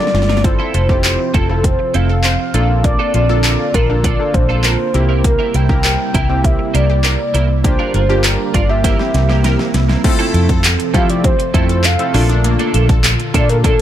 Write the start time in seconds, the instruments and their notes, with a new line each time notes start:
Already playing: analog synth pad D3 G3 A#3 F4, soft synth lead D5
0.07 snare
0.14 fingered electric bass G1, synth pluck F4, muted clean electric guitar stroke, snare
0.22 snare
0.29 clean electric guitar D4 F4 A#4, snare
0.37 snare
0.44 analog synth pad C3 F3 C4, synth keys C4 E4 F4 A4, synth pluck C4, soft synth lead C5, muted clean electric guitar stroke, kick, closed hi-hat
0.59 clean electric guitar C4 E4 A4, synth pluck E4
0.74 fingered electric bass F1, clean electric guitar C4 E4 A4, synth pluck F4, soft synth lead C5, closed hi-hat
0.89 synth keys C4 E4 F4 G4, synth pluck A4, muted clean electric guitar stroke, kick
1.04 synth pluck C5, soft synth lead C5, muted clean electric guitar stroke, clap, closed hi-hat
1.19 muted clean electric guitar stroke
1.34 fingered electric bass F1, clean electric guitar C4 E4 A4, synth pluck F4, soft synth lead A4, kick, closed hi-hat
1.49 synth keys C4 F4 A4, synth pluck E4, muted clean electric guitar stroke
1.64 soft synth lead C5, kick, closed hi-hat
1.79 muted clean electric guitar stroke
1.94 fingered electric bass F1, clean electric guitar C4 E4 A4, soft synth lead F5, closed hi-hat
2.09 synth pluck A4, muted clean electric guitar stroke
2.24 synth pluck C5, clap, closed hi-hat
2.39 muted clean electric guitar stroke
2.54 fingered electric bass A#1, analog synth pad D3 A#3 F4, synth keys A#3 D4 F4 A4, clean electric guitar D4 F4 A4, synth pluck F4, closed hi-hat
2.69 muted clean electric guitar stroke
2.84 synth pluck A#3, soft synth lead D5, muted clean electric guitar stroke, kick, closed hi-hat
2.99 synth pluck D4, clean electric guitar D4 F4 A4
3.14 fingered electric bass A#1, clean electric guitar D4 F4 A4, synth pluck F4, soft synth lead D5, closed hi-hat
3.29 synth keys A#3 D4 F4 A4, synth pluck A4
3.44 synth pluck A#4, soft synth lead D5, muted clean electric guitar stroke, clap, closed hi-hat
3.59 muted clean electric guitar stroke
3.74 fingered electric bass A#1, clean electric guitar D4 F4 A4, synth pluck F4, soft synth lead A#4, kick, closed hi-hat
3.89 synth keys A#3 D4 F4 A4, synth pluck D4, muted clean electric guitar stroke
4.04 clean electric guitar D4 F4 A4, soft synth lead D5, kick, closed hi-hat
4.19 synth keys A#3 D4 F4 A4, muted clean electric guitar stroke
4.34 fingered electric bass A#1, soft synth lead C5, muted clean electric guitar stroke, kick, closed hi-hat
4.49 clean electric guitar D4 F4 A4, synth pluck A4
4.64 clean electric guitar D4 F4 A4, synth pluck A#4, clap, closed hi-hat
4.79 muted clean electric guitar stroke
4.94 fingered electric bass C2, analog synth pad C3 G3 E4, synth keys A#3 C4 E4 G4, synth pluck E4, muted clean electric guitar stroke, closed hi-hat
5.09 clean electric guitar C4 E4 A#4
5.24 synth pluck A#3, soft synth lead A#4, muted clean electric guitar stroke, kick, closed hi-hat
5.39 synth pluck C4, clean electric guitar C4 E4 A#4
5.54 fingered electric bass C2, clean electric guitar C4 E4 A#4, synth pluck E4, soft synth lead G5, closed hi-hat
5.69 synth keys A#3 C4 E4 A#4, synth pluck G4, kick
5.84 synth pluck A#4, muted clean electric guitar stroke, clap, closed hi-hat
5.99 muted clean electric guitar stroke
6.14 fingered electric bass C2, clean electric guitar C4 E4 A#4, synth pluck E4, kick, closed hi-hat
6.29 synth keys A#3 C4 E4 G4, synth pluck C4, muted clean electric guitar stroke
6.44 soft synth lead E5, kick, closed hi-hat
6.59 muted clean electric guitar stroke
6.74 fingered electric bass C2, clean electric guitar C4 E4 A#4, soft synth lead D5, closed hi-hat
6.89 synth pluck G4, muted clean electric guitar stroke
7.04 synth pluck A#4, clap, closed hi-hat
7.19 muted clean electric guitar stroke
7.34 fingered electric bass C2, clean electric guitar C4 E4 A#4, synth pluck E4, closed hi-hat
7.49 muted clean electric guitar stroke
7.64 analog synth pad D3 G3 F4, synth keys A#3 D4 F4 G4, synth pluck A#3, soft synth lead C5, muted clean electric guitar stroke, kick, closed hi-hat
7.79 synth pluck D4, clean electric guitar D4 F4 A#4
7.94 fingered electric bass G1, clean electric guitar D4 F4 A#4, synth pluck F4, soft synth lead C5, closed hi-hat
8.09 synth keys A#3 D4 F4 G4, synth pluck G4
8.24 synth pluck A#4, soft synth lead A#4, muted clean electric guitar stroke, clap, closed hi-hat
8.39 muted clean electric guitar stroke
8.54 fingered electric bass G1, clean electric guitar D4 F4 A#4, synth pluck F4, soft synth lead D5, kick, closed hi-hat
8.69 synth keys A#3 D4 F4 G4, synth pluck D4, soft synth lead E5, muted clean electric guitar stroke
8.84 analog synth pad C3 A#3 E4, synth keys A#3 C4 E4 G4, clean electric guitar C4 E4 A#4, kick, snare, closed hi-hat
8.99 synth keys A#3 C4 E4 G4, muted clean electric guitar stroke, snare
9.14 fingered electric bass C2, muted clean electric guitar stroke, snare, closed hi-hat
9.29 clean electric guitar C4 E4 A#4, synth pluck G4, snare
9.44 clean electric guitar C4 E4 A#4, synth pluck A#4, snare, closed hi-hat
9.59 muted clean electric guitar stroke, snare
9.74 fingered electric bass C2, synth pluck E4, muted clean electric guitar stroke, snare, closed hi-hat
9.89 clean electric guitar C4 E4 A#4, snare
10.04 analog synth pad C3 F3 C4 A4, synth keys A3 C4 E4 F4 A4, synth pluck C4, muted clean electric guitar stroke, kick, closed hi-hat, crash
10.19 clean electric guitar C4 E4 A4, synth pluck E4, closed hi-hat
10.34 fingered electric bass F2, clean electric guitar C4 E4 A4, closed hi-hat
10.49 synth pluck A4, kick, closed hi-hat
10.64 muted clean electric guitar stroke, clap, closed hi-hat
10.79 muted clean electric guitar stroke, closed hi-hat
10.94 fingered electric bass F3, synth keys A3 C4 E4 F4 G4, clean electric guitar C4 E4 A4, synth pluck F4, soft synth lead F5, kick, closed hi-hat
11.09 synth pluck E4, soft synth lead D5, closed hi-hat
11.24 synth pluck C4, soft synth lead C5, kick, closed hi-hat
11.39 muted clean electric guitar stroke, closed hi-hat
11.54 fingered electric bass F2, synth keys A3 C4 E4 F4 A4, clean electric guitar C4 E4 A4, synth pluck F4, kick, closed hi-hat
11.69 synth pluck A4, soft synth lead C5, muted clean electric guitar stroke, closed hi-hat
11.84 soft synth lead F5, clap, closed hi-hat
11.99 synth keys A3 C4 E4 F4 A4, muted clean electric guitar stroke, closed hi-hat
12.14 fingered electric bass A#1, analog synth pad A#2 D3 F4, synth keys A3 A#3 D4 F4 A4, clean electric guitar A#3 D4 A4, synth pluck F4, open hi-hat
12.29 synth pluck D4, muted clean electric guitar stroke, closed hi-hat
12.44 synth pluck A#3, muted clean electric guitar stroke, closed hi-hat
12.59 clean electric guitar A#3 D4 A4, synth pluck D4, closed hi-hat
12.74 fingered electric bass A#1, clean electric guitar A#3 D4 A4, closed hi-hat
12.89 synth pluck A4, muted clean electric guitar stroke, kick, closed hi-hat
13.04 muted clean electric guitar stroke, clap, closed hi-hat
13.19 muted clean electric guitar stroke, closed hi-hat
13.34 fingered electric bass A#2, synth keys A3 A#3 D4 F4 A4, clean electric guitar A#3 D4 A4, synth pluck F4, soft synth lead D5, kick, closed hi-hat
13.49 synth pluck D4, soft synth lead A#4, muted clean electric guitar stroke, closed hi-hat
13.64 clean electric guitar A#3 D4 A4, synth pluck A#3, soft synth lead A4, kick, closed hi-hat